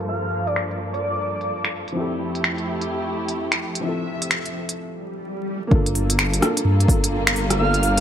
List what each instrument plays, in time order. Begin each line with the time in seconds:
Already playing: upright piano G2 A#3 D4 F4 A4, string section G2 F3 A#3 A4
0.01 closed hi-hat
0.09 digital synth lead F5
0.46 digital synth lead D5, closed hi-hat
0.55 digital synth lead D5, finger snap, closed hi-hat
0.71 closed hi-hat
0.93 digital synth lead D5, closed hi-hat
1.41 closed hi-hat
1.65 finger snap, closed hi-hat
1.88 closed hi-hat
1.92 upright piano F3 C4 E4, string section A3 E4
1.96 string section F2 G4, upright piano G4 A4
2.35 closed hi-hat
2.44 finger snap, closed hi-hat
2.58 closed hi-hat
2.81 closed hi-hat
3.28 closed hi-hat
3.52 finger snap, closed hi-hat
3.75 closed hi-hat
3.80 string section C3 E5, upright piano F3 C4 E4
3.86 upright piano F4 A4
4.22 closed hi-hat
4.31 finger snap, closed hi-hat
4.45 closed hi-hat
4.69 closed hi-hat
4.78 swell
5.67 detuned saw bass G1, upright piano A#3 D4
5.71 string section G3 A#3 F4 A4, upright piano F4 A4, kick
5.86 closed hi-hat
5.95 open hi-hat
6.10 closed hi-hat
6.19 finger snap
6.34 closed hi-hat
6.40 upright piano A#3 D4 F4 A4, cross-stick, open hi-hat
6.57 closed hi-hat
6.65 detuned saw bass G2
6.80 closed hi-hat
6.85 detuned saw bass G1, upright piano A#3 D4, kick
6.89 upright piano F4 A4, open hi-hat
7.04 closed hi-hat
7.27 finger snap
7.36 open hi-hat
7.50 cross-stick, closed hi-hat
7.57 detuned saw bass G1, upright piano A#3 D4 F4, string section G4, digital synth lead F5
7.61 upright piano A4
7.74 closed hi-hat
7.83 open hi-hat